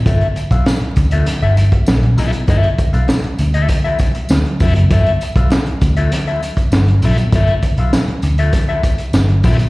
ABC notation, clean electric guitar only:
X:1
M:4/4
L:1/16
Q:1/4=99
K:Gmix
V:1 name="Clean electric guitar"
[B,FAe] z2 [B,FAf] z3 [B,FAe] z [B,FAe] z4 [B,FAe] z | [B,FAe] z2 [B,FAf] z3 [B,FAe] z [B,FAe] z4 [B,FAe] z | [B,FAe] z2 [B,FAf] z3 [B,FAe] z [B,FAe] z4 [B,FAe] z | [B,FAe] z2 [B,FAf] z3 [B,FAe] z [B,FAe] z4 [B,FAe] z |]